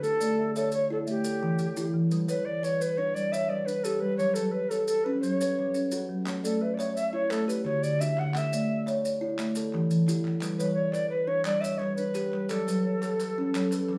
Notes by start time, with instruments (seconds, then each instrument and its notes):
Already playing: marimba D3 F#4
0.02 kalimba A3, native american-style wooden flute A4, maracas
0.20 marimba A3, kalimba D5, maracas
0.38 marimba E5
0.56 native american-style wooden flute A4, kalimba C#5, marimba E5, maracas
0.72 marimba C#5, native american-style wooden flute C#5, maracas
0.90 kalimba E4, native american-style wooden flute A4, marimba C#5
1.07 marimba A3 E5, native american-style wooden flute G4, maracas
1.24 kalimba A4, maracas
1.41 kalimba E3, marimba G4
1.59 marimba E3, maracas
1.77 kalimba E4, marimba G4, maracas
1.94 marimba E3
2.11 kalimba G3, marimba B4, maracas
2.28 marimba G3, native american-style wooden flute B4, kalimba C#5, maracas
2.45 native american-style wooden flute D5, marimba D5
2.63 kalimba B4, native american-style wooden flute C#5, marimba D5, maracas
2.80 marimba B4, native american-style wooden flute B4, maracas
2.97 kalimba D4, marimba B4, native american-style wooden flute C#5
3.14 marimba G3 D5, native american-style wooden flute D5, maracas
3.32 kalimba C#5, native american-style wooden flute E5, maracas
3.49 kalimba G3, marimba B4, native american-style wooden flute D5
3.66 marimba D4, native american-style wooden flute B4, maracas
3.84 kalimba G4, native american-style wooden flute A4, marimba B4, maracas
4.00 marimba G3, native american-style wooden flute B4
4.17 kalimba F#3, native american-style wooden flute C#5, maracas
4.34 marimba F#3, native american-style wooden flute A4, kalimba B4, maracas
4.52 native american-style wooden flute B4, marimba C#5
4.70 native american-style wooden flute A4, kalimba A4, marimba C#5, maracas
4.87 native american-style wooden flute A4, marimba A4, maracas
5.04 kalimba C#4, marimba A4, native american-style wooden flute B4
5.21 marimba F#3, native american-style wooden flute C#5, maracas
5.41 kalimba B4, maracas
5.58 kalimba F#3, marimba A4
5.74 marimba C#4, maracas
5.91 kalimba F#4, marimba A4, maracas
6.09 marimba F#3
6.26 kalimba A3, marimba C#5, clap, maracas
6.44 marimba A3, native american-style wooden flute A4, kalimba D5, maracas
6.61 native american-style wooden flute B4, marimba E5
6.74 native american-style wooden flute C#5 D5
6.78 kalimba C#5, marimba E5, clap, maracas
6.96 marimba C#5, native american-style wooden flute E5, maracas
7.13 kalimba E4, native american-style wooden flute C#5
7.30 marimba A3 E5, native american-style wooden flute A4, clap, maracas
7.47 kalimba G4, native american-style wooden flute B4, clap, maracas
7.65 kalimba D3, marimba F#4, native american-style wooden flute C#5, clap
7.83 marimba D3, native american-style wooden flute D5, maracas
8.00 kalimba D4, marimba F#4, native american-style wooden flute E5, clap, maracas
8.18 marimba D3, native american-style wooden flute F#5, clap
8.34 kalimba A3, marimba A4, native american-style wooden flute E5, clap, maracas
8.52 marimba A3, kalimba D5, maracas
8.70 marimba E5
8.87 kalimba C#5, marimba E5, clap, maracas
9.04 marimba C#5, maracas
9.21 kalimba E4, marimba C#5
9.38 marimba A3 E5, clap, maracas
9.55 kalimba A4, clap, maracas
9.73 kalimba E3, marimba G4, clap
9.90 marimba E3, maracas
10.08 kalimba E4, marimba G4, clap, maracas
10.24 marimba E3, clap
10.41 kalimba G3, marimba B4, clap, maracas
10.58 marimba G3, native american-style wooden flute B4, kalimba C#5, maracas
10.74 native american-style wooden flute C#5, marimba D5
10.92 kalimba B4, native american-style wooden flute D5, marimba D5, clap, maracas
11.10 native american-style wooden flute B4, marimba B4
11.27 kalimba D4, marimba B4, native american-style wooden flute C#5
11.45 marimba G3 D5, native american-style wooden flute D5, clap, maracas
11.61 kalimba C#5, native american-style wooden flute E5, clap, maracas
11.78 kalimba G3, marimba B4, native american-style wooden flute C#5, clap
11.96 marimba D4, native american-style wooden flute B4, maracas
12.15 kalimba G4, clap, maracas
12.33 marimba G3, clap
12.49 kalimba F#3, native american-style wooden flute A4, marimba D5, clap, maracas
12.68 marimba F#3, kalimba B4, clap, maracas
12.85 marimba C#5
13.02 kalimba A4, marimba C#5, clap, maracas
13.20 marimba A4, clap, maracas
13.38 kalimba C#4, marimba A4
13.54 marimba F#3 C#5, clap, maracas
13.72 kalimba B4, clap, maracas
13.89 kalimba F#3, marimba A4, clap